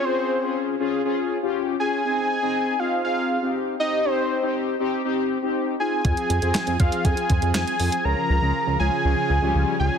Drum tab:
HH |----------------|----------------|----------------|xxxxxxxxxxxxxxox|
CP |----------------|----------------|----------------|----x-------x---|
SD |----------------|----------------|----------------|----o-------o---|
BD |----------------|----------------|----------------|o-----o-o-o-----|

HH |----------------|
CP |----------------|
SD |----------------|
BD |----------------|